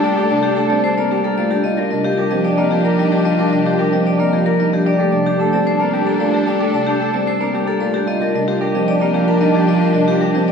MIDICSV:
0, 0, Header, 1, 6, 480
1, 0, Start_track
1, 0, Key_signature, -2, "major"
1, 0, Tempo, 535714
1, 35, Time_signature, 3, 2, 24, 8
1, 9425, End_track
2, 0, Start_track
2, 0, Title_t, "Vibraphone"
2, 0, Program_c, 0, 11
2, 36, Note_on_c, 0, 74, 88
2, 153, Note_on_c, 0, 69, 73
2, 191, Note_off_c, 0, 74, 0
2, 272, Note_on_c, 0, 74, 73
2, 310, Note_off_c, 0, 69, 0
2, 383, Note_on_c, 0, 67, 89
2, 430, Note_off_c, 0, 74, 0
2, 506, Note_on_c, 0, 69, 75
2, 547, Note_off_c, 0, 67, 0
2, 627, Note_on_c, 0, 74, 75
2, 668, Note_off_c, 0, 69, 0
2, 752, Note_on_c, 0, 72, 93
2, 788, Note_off_c, 0, 74, 0
2, 876, Note_on_c, 0, 74, 72
2, 910, Note_off_c, 0, 72, 0
2, 995, Note_on_c, 0, 67, 68
2, 1031, Note_off_c, 0, 74, 0
2, 1115, Note_on_c, 0, 69, 89
2, 1151, Note_off_c, 0, 67, 0
2, 1234, Note_on_c, 0, 74, 73
2, 1271, Note_off_c, 0, 69, 0
2, 1350, Note_on_c, 0, 67, 81
2, 1391, Note_off_c, 0, 74, 0
2, 1467, Note_on_c, 0, 75, 84
2, 1509, Note_off_c, 0, 67, 0
2, 1590, Note_on_c, 0, 70, 72
2, 1628, Note_off_c, 0, 75, 0
2, 1708, Note_on_c, 0, 75, 66
2, 1749, Note_off_c, 0, 70, 0
2, 1831, Note_on_c, 0, 67, 89
2, 1868, Note_off_c, 0, 75, 0
2, 1948, Note_on_c, 0, 70, 66
2, 1989, Note_off_c, 0, 67, 0
2, 2067, Note_on_c, 0, 75, 71
2, 2109, Note_off_c, 0, 70, 0
2, 2192, Note_on_c, 0, 74, 90
2, 2228, Note_off_c, 0, 75, 0
2, 2309, Note_on_c, 0, 75, 72
2, 2350, Note_off_c, 0, 74, 0
2, 2428, Note_on_c, 0, 67, 68
2, 2469, Note_off_c, 0, 75, 0
2, 2554, Note_on_c, 0, 70, 85
2, 2588, Note_off_c, 0, 67, 0
2, 2682, Note_on_c, 0, 75, 73
2, 2711, Note_off_c, 0, 70, 0
2, 2797, Note_on_c, 0, 67, 73
2, 2833, Note_off_c, 0, 75, 0
2, 2915, Note_on_c, 0, 75, 86
2, 2952, Note_off_c, 0, 67, 0
2, 3044, Note_on_c, 0, 70, 66
2, 3071, Note_off_c, 0, 75, 0
2, 3160, Note_on_c, 0, 75, 70
2, 3194, Note_off_c, 0, 70, 0
2, 3284, Note_on_c, 0, 67, 86
2, 3313, Note_off_c, 0, 75, 0
2, 3395, Note_on_c, 0, 70, 68
2, 3434, Note_off_c, 0, 67, 0
2, 3523, Note_on_c, 0, 75, 72
2, 3551, Note_off_c, 0, 70, 0
2, 3645, Note_on_c, 0, 74, 88
2, 3674, Note_off_c, 0, 75, 0
2, 3761, Note_on_c, 0, 75, 70
2, 3794, Note_off_c, 0, 74, 0
2, 3878, Note_on_c, 0, 67, 70
2, 3913, Note_off_c, 0, 75, 0
2, 3997, Note_on_c, 0, 70, 89
2, 4032, Note_off_c, 0, 67, 0
2, 4121, Note_on_c, 0, 75, 73
2, 4152, Note_off_c, 0, 70, 0
2, 4243, Note_on_c, 0, 67, 76
2, 4273, Note_off_c, 0, 75, 0
2, 4359, Note_on_c, 0, 74, 85
2, 4394, Note_off_c, 0, 67, 0
2, 4470, Note_on_c, 0, 69, 68
2, 4512, Note_off_c, 0, 74, 0
2, 4590, Note_on_c, 0, 74, 72
2, 4629, Note_off_c, 0, 69, 0
2, 4716, Note_on_c, 0, 67, 84
2, 4749, Note_off_c, 0, 74, 0
2, 4842, Note_on_c, 0, 69, 67
2, 4871, Note_off_c, 0, 67, 0
2, 4956, Note_on_c, 0, 74, 71
2, 4993, Note_off_c, 0, 69, 0
2, 5078, Note_on_c, 0, 72, 89
2, 5111, Note_off_c, 0, 74, 0
2, 5207, Note_on_c, 0, 74, 69
2, 5232, Note_off_c, 0, 72, 0
2, 5319, Note_on_c, 0, 67, 69
2, 5355, Note_off_c, 0, 74, 0
2, 5436, Note_on_c, 0, 69, 84
2, 5472, Note_off_c, 0, 67, 0
2, 5555, Note_on_c, 0, 74, 75
2, 5591, Note_off_c, 0, 69, 0
2, 5679, Note_on_c, 0, 67, 75
2, 5711, Note_off_c, 0, 74, 0
2, 5802, Note_on_c, 0, 74, 85
2, 5832, Note_off_c, 0, 67, 0
2, 5913, Note_on_c, 0, 69, 67
2, 5953, Note_off_c, 0, 74, 0
2, 6039, Note_on_c, 0, 74, 66
2, 6070, Note_off_c, 0, 69, 0
2, 6151, Note_on_c, 0, 67, 83
2, 6192, Note_off_c, 0, 74, 0
2, 6274, Note_on_c, 0, 69, 68
2, 6310, Note_off_c, 0, 67, 0
2, 6394, Note_on_c, 0, 74, 75
2, 6431, Note_off_c, 0, 69, 0
2, 6518, Note_on_c, 0, 72, 91
2, 6550, Note_off_c, 0, 74, 0
2, 6638, Note_on_c, 0, 74, 75
2, 6672, Note_off_c, 0, 72, 0
2, 6762, Note_on_c, 0, 67, 66
2, 6792, Note_off_c, 0, 74, 0
2, 6878, Note_on_c, 0, 69, 89
2, 6913, Note_off_c, 0, 67, 0
2, 6992, Note_on_c, 0, 74, 70
2, 7032, Note_off_c, 0, 69, 0
2, 7115, Note_on_c, 0, 67, 80
2, 7150, Note_off_c, 0, 74, 0
2, 7236, Note_on_c, 0, 75, 88
2, 7271, Note_off_c, 0, 67, 0
2, 7361, Note_on_c, 0, 70, 65
2, 7391, Note_off_c, 0, 75, 0
2, 7486, Note_on_c, 0, 75, 69
2, 7513, Note_off_c, 0, 70, 0
2, 7596, Note_on_c, 0, 67, 88
2, 7635, Note_off_c, 0, 75, 0
2, 7719, Note_on_c, 0, 70, 68
2, 7751, Note_off_c, 0, 67, 0
2, 7840, Note_on_c, 0, 75, 73
2, 7872, Note_off_c, 0, 70, 0
2, 7957, Note_on_c, 0, 74, 91
2, 7993, Note_off_c, 0, 75, 0
2, 8077, Note_on_c, 0, 75, 70
2, 8112, Note_off_c, 0, 74, 0
2, 8193, Note_on_c, 0, 67, 70
2, 8232, Note_off_c, 0, 75, 0
2, 8315, Note_on_c, 0, 70, 82
2, 8350, Note_off_c, 0, 67, 0
2, 8430, Note_on_c, 0, 75, 73
2, 8471, Note_off_c, 0, 70, 0
2, 8556, Note_on_c, 0, 67, 79
2, 8589, Note_off_c, 0, 75, 0
2, 8676, Note_on_c, 0, 75, 88
2, 8711, Note_off_c, 0, 67, 0
2, 8792, Note_on_c, 0, 70, 69
2, 8831, Note_off_c, 0, 75, 0
2, 8908, Note_on_c, 0, 75, 73
2, 8950, Note_off_c, 0, 70, 0
2, 9030, Note_on_c, 0, 67, 86
2, 9069, Note_off_c, 0, 75, 0
2, 9148, Note_on_c, 0, 70, 72
2, 9189, Note_off_c, 0, 67, 0
2, 9272, Note_on_c, 0, 75, 69
2, 9308, Note_off_c, 0, 70, 0
2, 9392, Note_on_c, 0, 74, 89
2, 9425, Note_off_c, 0, 74, 0
2, 9425, Note_off_c, 0, 75, 0
2, 9425, End_track
3, 0, Start_track
3, 0, Title_t, "Clean electric guitar"
3, 0, Program_c, 1, 27
3, 34, Note_on_c, 1, 67, 78
3, 147, Note_off_c, 1, 67, 0
3, 157, Note_on_c, 1, 67, 88
3, 277, Note_on_c, 1, 62, 76
3, 312, Note_off_c, 1, 67, 0
3, 397, Note_on_c, 1, 67, 72
3, 432, Note_off_c, 1, 62, 0
3, 513, Note_off_c, 1, 67, 0
3, 517, Note_on_c, 1, 69, 89
3, 638, Note_on_c, 1, 60, 77
3, 672, Note_off_c, 1, 69, 0
3, 759, Note_on_c, 1, 69, 75
3, 792, Note_off_c, 1, 60, 0
3, 875, Note_off_c, 1, 69, 0
3, 879, Note_on_c, 1, 70, 87
3, 997, Note_off_c, 1, 70, 0
3, 1000, Note_on_c, 1, 67, 72
3, 1118, Note_off_c, 1, 67, 0
3, 1121, Note_on_c, 1, 70, 73
3, 1243, Note_on_c, 1, 65, 96
3, 1273, Note_off_c, 1, 70, 0
3, 1356, Note_off_c, 1, 65, 0
3, 1360, Note_on_c, 1, 62, 72
3, 1477, Note_off_c, 1, 62, 0
3, 1481, Note_on_c, 1, 65, 74
3, 1590, Note_off_c, 1, 65, 0
3, 1600, Note_on_c, 1, 65, 86
3, 1715, Note_off_c, 1, 65, 0
3, 1719, Note_on_c, 1, 62, 77
3, 1834, Note_off_c, 1, 62, 0
3, 1837, Note_on_c, 1, 65, 70
3, 1962, Note_on_c, 1, 67, 86
3, 1992, Note_off_c, 1, 65, 0
3, 2077, Note_on_c, 1, 60, 75
3, 2113, Note_off_c, 1, 67, 0
3, 2195, Note_on_c, 1, 67, 71
3, 2232, Note_off_c, 1, 60, 0
3, 2311, Note_off_c, 1, 67, 0
3, 2314, Note_on_c, 1, 70, 86
3, 2435, Note_on_c, 1, 65, 77
3, 2471, Note_off_c, 1, 70, 0
3, 2553, Note_on_c, 1, 70, 72
3, 2591, Note_off_c, 1, 65, 0
3, 2676, Note_on_c, 1, 63, 88
3, 2710, Note_off_c, 1, 70, 0
3, 2793, Note_off_c, 1, 63, 0
3, 2796, Note_on_c, 1, 62, 68
3, 2914, Note_off_c, 1, 62, 0
3, 2918, Note_on_c, 1, 65, 70
3, 3024, Note_off_c, 1, 65, 0
3, 3034, Note_on_c, 1, 65, 86
3, 3154, Note_off_c, 1, 65, 0
3, 3158, Note_on_c, 1, 62, 72
3, 3272, Note_off_c, 1, 62, 0
3, 3275, Note_on_c, 1, 65, 69
3, 3396, Note_on_c, 1, 67, 90
3, 3431, Note_off_c, 1, 65, 0
3, 3516, Note_on_c, 1, 60, 73
3, 3551, Note_off_c, 1, 67, 0
3, 3638, Note_on_c, 1, 67, 73
3, 3671, Note_off_c, 1, 60, 0
3, 3751, Note_off_c, 1, 67, 0
3, 3754, Note_on_c, 1, 70, 83
3, 3874, Note_on_c, 1, 65, 70
3, 3911, Note_off_c, 1, 70, 0
3, 3995, Note_on_c, 1, 70, 70
3, 4031, Note_off_c, 1, 65, 0
3, 4118, Note_on_c, 1, 63, 90
3, 4151, Note_off_c, 1, 70, 0
3, 4236, Note_off_c, 1, 63, 0
3, 4240, Note_on_c, 1, 62, 69
3, 4355, Note_on_c, 1, 67, 68
3, 4393, Note_off_c, 1, 62, 0
3, 4463, Note_off_c, 1, 67, 0
3, 4474, Note_on_c, 1, 67, 89
3, 4597, Note_on_c, 1, 62, 77
3, 4631, Note_off_c, 1, 67, 0
3, 4718, Note_on_c, 1, 67, 67
3, 4752, Note_off_c, 1, 62, 0
3, 4830, Note_off_c, 1, 67, 0
3, 4833, Note_on_c, 1, 69, 89
3, 4955, Note_on_c, 1, 60, 71
3, 4990, Note_off_c, 1, 69, 0
3, 5076, Note_on_c, 1, 69, 69
3, 5111, Note_off_c, 1, 60, 0
3, 5192, Note_off_c, 1, 69, 0
3, 5195, Note_on_c, 1, 70, 82
3, 5313, Note_off_c, 1, 70, 0
3, 5317, Note_on_c, 1, 67, 75
3, 5433, Note_off_c, 1, 67, 0
3, 5436, Note_on_c, 1, 70, 68
3, 5556, Note_on_c, 1, 65, 86
3, 5591, Note_off_c, 1, 70, 0
3, 5675, Note_off_c, 1, 65, 0
3, 5679, Note_on_c, 1, 62, 65
3, 5801, Note_on_c, 1, 67, 73
3, 5832, Note_off_c, 1, 62, 0
3, 5909, Note_off_c, 1, 67, 0
3, 5920, Note_on_c, 1, 67, 86
3, 6037, Note_on_c, 1, 62, 75
3, 6073, Note_off_c, 1, 67, 0
3, 6161, Note_on_c, 1, 67, 66
3, 6192, Note_off_c, 1, 62, 0
3, 6275, Note_off_c, 1, 67, 0
3, 6278, Note_on_c, 1, 69, 84
3, 6400, Note_on_c, 1, 60, 74
3, 6432, Note_off_c, 1, 69, 0
3, 6517, Note_on_c, 1, 69, 71
3, 6553, Note_off_c, 1, 60, 0
3, 6632, Note_off_c, 1, 69, 0
3, 6636, Note_on_c, 1, 70, 85
3, 6747, Note_off_c, 1, 70, 0
3, 6750, Note_on_c, 1, 67, 70
3, 6869, Note_off_c, 1, 67, 0
3, 6872, Note_on_c, 1, 70, 71
3, 6993, Note_on_c, 1, 65, 86
3, 7030, Note_off_c, 1, 70, 0
3, 7109, Note_off_c, 1, 65, 0
3, 7112, Note_on_c, 1, 62, 64
3, 7228, Note_off_c, 1, 62, 0
3, 7231, Note_on_c, 1, 65, 72
3, 7342, Note_off_c, 1, 65, 0
3, 7352, Note_on_c, 1, 65, 82
3, 7471, Note_off_c, 1, 65, 0
3, 7475, Note_on_c, 1, 62, 72
3, 7592, Note_off_c, 1, 62, 0
3, 7595, Note_on_c, 1, 65, 70
3, 7713, Note_on_c, 1, 67, 90
3, 7751, Note_off_c, 1, 65, 0
3, 7835, Note_on_c, 1, 60, 72
3, 7870, Note_off_c, 1, 67, 0
3, 7955, Note_on_c, 1, 67, 72
3, 7991, Note_off_c, 1, 60, 0
3, 8073, Note_off_c, 1, 67, 0
3, 8076, Note_on_c, 1, 70, 88
3, 8194, Note_on_c, 1, 65, 71
3, 8231, Note_off_c, 1, 70, 0
3, 8313, Note_on_c, 1, 70, 72
3, 8351, Note_off_c, 1, 65, 0
3, 8432, Note_on_c, 1, 63, 88
3, 8470, Note_off_c, 1, 70, 0
3, 8549, Note_off_c, 1, 63, 0
3, 8553, Note_on_c, 1, 62, 68
3, 8669, Note_off_c, 1, 62, 0
3, 8672, Note_on_c, 1, 65, 74
3, 8780, Note_off_c, 1, 65, 0
3, 8791, Note_on_c, 1, 65, 86
3, 8907, Note_off_c, 1, 65, 0
3, 8911, Note_on_c, 1, 62, 74
3, 9030, Note_off_c, 1, 62, 0
3, 9033, Note_on_c, 1, 65, 69
3, 9153, Note_on_c, 1, 67, 88
3, 9190, Note_off_c, 1, 65, 0
3, 9278, Note_on_c, 1, 60, 78
3, 9310, Note_off_c, 1, 67, 0
3, 9395, Note_on_c, 1, 67, 76
3, 9425, Note_off_c, 1, 60, 0
3, 9425, Note_off_c, 1, 67, 0
3, 9425, End_track
4, 0, Start_track
4, 0, Title_t, "Violin section"
4, 0, Program_c, 2, 48
4, 0, Note_on_c, 2, 62, 81
4, 0, Note_on_c, 2, 69, 80
4, 1322, Note_off_c, 2, 62, 0
4, 1322, Note_off_c, 2, 69, 0
4, 1474, Note_on_c, 2, 67, 73
4, 1476, Note_on_c, 2, 62, 75
4, 4199, Note_off_c, 2, 62, 0
4, 4199, Note_off_c, 2, 67, 0
4, 4355, Note_on_c, 2, 62, 79
4, 4357, Note_on_c, 2, 69, 73
4, 7079, Note_off_c, 2, 62, 0
4, 7080, Note_off_c, 2, 69, 0
4, 7237, Note_on_c, 2, 67, 76
4, 7240, Note_on_c, 2, 62, 75
4, 9425, Note_off_c, 2, 62, 0
4, 9425, Note_off_c, 2, 67, 0
4, 9425, End_track
5, 0, Start_track
5, 0, Title_t, "Alto flute"
5, 0, Program_c, 3, 73
5, 97, Note_on_c, 3, 62, 76
5, 274, Note_off_c, 3, 62, 0
5, 349, Note_on_c, 3, 62, 83
5, 526, Note_off_c, 3, 62, 0
5, 600, Note_on_c, 3, 62, 66
5, 776, Note_off_c, 3, 62, 0
5, 848, Note_on_c, 3, 62, 55
5, 1026, Note_off_c, 3, 62, 0
5, 1105, Note_on_c, 3, 62, 42
5, 1280, Note_off_c, 3, 62, 0
5, 1473, Note_on_c, 3, 62, 41
5, 1650, Note_off_c, 3, 62, 0
5, 1729, Note_on_c, 3, 62, 57
5, 1904, Note_off_c, 3, 62, 0
5, 1978, Note_on_c, 3, 62, 66
5, 2153, Note_off_c, 3, 62, 0
5, 2229, Note_on_c, 3, 62, 76
5, 2404, Note_off_c, 3, 62, 0
5, 2482, Note_on_c, 3, 62, 80
5, 2657, Note_off_c, 3, 62, 0
5, 2730, Note_on_c, 3, 62, 90
5, 2905, Note_off_c, 3, 62, 0
5, 2982, Note_on_c, 3, 62, 78
5, 3157, Note_off_c, 3, 62, 0
5, 3230, Note_on_c, 3, 62, 79
5, 3406, Note_off_c, 3, 62, 0
5, 3483, Note_on_c, 3, 62, 64
5, 3658, Note_off_c, 3, 62, 0
5, 3738, Note_on_c, 3, 62, 58
5, 3912, Note_off_c, 3, 62, 0
5, 3985, Note_on_c, 3, 62, 42
5, 4160, Note_off_c, 3, 62, 0
5, 4356, Note_on_c, 3, 62, 41
5, 4531, Note_off_c, 3, 62, 0
5, 4603, Note_on_c, 3, 62, 55
5, 4780, Note_off_c, 3, 62, 0
5, 4861, Note_on_c, 3, 62, 67
5, 5035, Note_off_c, 3, 62, 0
5, 5114, Note_on_c, 3, 62, 77
5, 5287, Note_off_c, 3, 62, 0
5, 5368, Note_on_c, 3, 62, 80
5, 5540, Note_off_c, 3, 62, 0
5, 5613, Note_on_c, 3, 62, 90
5, 5787, Note_off_c, 3, 62, 0
5, 5862, Note_on_c, 3, 62, 78
5, 6037, Note_off_c, 3, 62, 0
5, 6110, Note_on_c, 3, 62, 75
5, 6286, Note_off_c, 3, 62, 0
5, 6361, Note_on_c, 3, 62, 66
5, 6537, Note_off_c, 3, 62, 0
5, 6621, Note_on_c, 3, 62, 54
5, 6794, Note_off_c, 3, 62, 0
5, 6871, Note_on_c, 3, 62, 40
5, 7044, Note_off_c, 3, 62, 0
5, 7240, Note_on_c, 3, 62, 41
5, 7414, Note_off_c, 3, 62, 0
5, 7490, Note_on_c, 3, 62, 55
5, 7664, Note_off_c, 3, 62, 0
5, 7739, Note_on_c, 3, 62, 66
5, 7914, Note_off_c, 3, 62, 0
5, 7983, Note_on_c, 3, 62, 81
5, 8160, Note_off_c, 3, 62, 0
5, 8235, Note_on_c, 3, 62, 76
5, 8412, Note_off_c, 3, 62, 0
5, 8485, Note_on_c, 3, 62, 90
5, 8662, Note_off_c, 3, 62, 0
5, 8737, Note_on_c, 3, 62, 79
5, 8914, Note_off_c, 3, 62, 0
5, 8992, Note_on_c, 3, 62, 81
5, 9167, Note_off_c, 3, 62, 0
5, 9244, Note_on_c, 3, 62, 63
5, 9419, Note_off_c, 3, 62, 0
5, 9425, End_track
6, 0, Start_track
6, 0, Title_t, "Marimba"
6, 0, Program_c, 4, 12
6, 158, Note_on_c, 4, 57, 68
6, 281, Note_on_c, 4, 48, 71
6, 312, Note_off_c, 4, 57, 0
6, 433, Note_off_c, 4, 48, 0
6, 515, Note_on_c, 4, 57, 71
6, 639, Note_on_c, 4, 55, 70
6, 671, Note_off_c, 4, 57, 0
6, 792, Note_off_c, 4, 55, 0
6, 875, Note_on_c, 4, 58, 71
6, 998, Note_on_c, 4, 55, 69
6, 1031, Note_off_c, 4, 58, 0
6, 1152, Note_off_c, 4, 55, 0
6, 1239, Note_on_c, 4, 57, 79
6, 1356, Note_on_c, 4, 55, 68
6, 1392, Note_off_c, 4, 57, 0
6, 1511, Note_off_c, 4, 55, 0
6, 1599, Note_on_c, 4, 55, 66
6, 1721, Note_on_c, 4, 48, 75
6, 1752, Note_off_c, 4, 55, 0
6, 1873, Note_off_c, 4, 48, 0
6, 1958, Note_on_c, 4, 55, 72
6, 2076, Note_on_c, 4, 53, 68
6, 2112, Note_off_c, 4, 55, 0
6, 2231, Note_off_c, 4, 53, 0
6, 2314, Note_on_c, 4, 58, 73
6, 2437, Note_on_c, 4, 53, 68
6, 2471, Note_off_c, 4, 58, 0
6, 2592, Note_off_c, 4, 53, 0
6, 2676, Note_on_c, 4, 55, 72
6, 2794, Note_on_c, 4, 53, 68
6, 2831, Note_off_c, 4, 55, 0
6, 2951, Note_off_c, 4, 53, 0
6, 3035, Note_on_c, 4, 55, 66
6, 3156, Note_on_c, 4, 48, 73
6, 3191, Note_off_c, 4, 55, 0
6, 3311, Note_off_c, 4, 48, 0
6, 3407, Note_on_c, 4, 55, 71
6, 3520, Note_on_c, 4, 53, 68
6, 3555, Note_off_c, 4, 55, 0
6, 3673, Note_off_c, 4, 53, 0
6, 3762, Note_on_c, 4, 58, 73
6, 3880, Note_on_c, 4, 53, 63
6, 3913, Note_off_c, 4, 58, 0
6, 4033, Note_off_c, 4, 53, 0
6, 4121, Note_on_c, 4, 55, 71
6, 4247, Note_on_c, 4, 53, 69
6, 4273, Note_off_c, 4, 55, 0
6, 4395, Note_off_c, 4, 53, 0
6, 4481, Note_on_c, 4, 57, 67
6, 4610, Note_on_c, 4, 48, 71
6, 4633, Note_off_c, 4, 57, 0
6, 4756, Note_off_c, 4, 48, 0
6, 4848, Note_on_c, 4, 57, 68
6, 4967, Note_on_c, 4, 55, 69
6, 4995, Note_off_c, 4, 57, 0
6, 5115, Note_off_c, 4, 55, 0
6, 5204, Note_on_c, 4, 58, 68
6, 5323, Note_on_c, 4, 55, 62
6, 5354, Note_off_c, 4, 58, 0
6, 5474, Note_off_c, 4, 55, 0
6, 5561, Note_on_c, 4, 57, 73
6, 5682, Note_on_c, 4, 55, 68
6, 5713, Note_off_c, 4, 57, 0
6, 5833, Note_off_c, 4, 55, 0
6, 5923, Note_on_c, 4, 57, 68
6, 6045, Note_on_c, 4, 48, 69
6, 6074, Note_off_c, 4, 57, 0
6, 6195, Note_off_c, 4, 48, 0
6, 6284, Note_on_c, 4, 57, 66
6, 6403, Note_on_c, 4, 55, 72
6, 6434, Note_off_c, 4, 57, 0
6, 6554, Note_off_c, 4, 55, 0
6, 6643, Note_on_c, 4, 58, 68
6, 6764, Note_on_c, 4, 55, 67
6, 6794, Note_off_c, 4, 58, 0
6, 6914, Note_off_c, 4, 55, 0
6, 7003, Note_on_c, 4, 57, 71
6, 7124, Note_on_c, 4, 55, 68
6, 7154, Note_off_c, 4, 57, 0
6, 7274, Note_off_c, 4, 55, 0
6, 7365, Note_on_c, 4, 55, 72
6, 7482, Note_on_c, 4, 48, 73
6, 7514, Note_off_c, 4, 55, 0
6, 7633, Note_off_c, 4, 48, 0
6, 7723, Note_on_c, 4, 55, 72
6, 7841, Note_on_c, 4, 53, 69
6, 7874, Note_off_c, 4, 55, 0
6, 7993, Note_off_c, 4, 53, 0
6, 8081, Note_on_c, 4, 58, 71
6, 8199, Note_on_c, 4, 53, 71
6, 8233, Note_off_c, 4, 58, 0
6, 8352, Note_off_c, 4, 53, 0
6, 8437, Note_on_c, 4, 55, 72
6, 8558, Note_on_c, 4, 53, 70
6, 8592, Note_off_c, 4, 55, 0
6, 8712, Note_off_c, 4, 53, 0
6, 8795, Note_on_c, 4, 55, 66
6, 8915, Note_on_c, 4, 48, 72
6, 8951, Note_off_c, 4, 55, 0
6, 9071, Note_off_c, 4, 48, 0
6, 9154, Note_on_c, 4, 55, 70
6, 9275, Note_on_c, 4, 53, 72
6, 9311, Note_off_c, 4, 55, 0
6, 9425, Note_off_c, 4, 53, 0
6, 9425, End_track
0, 0, End_of_file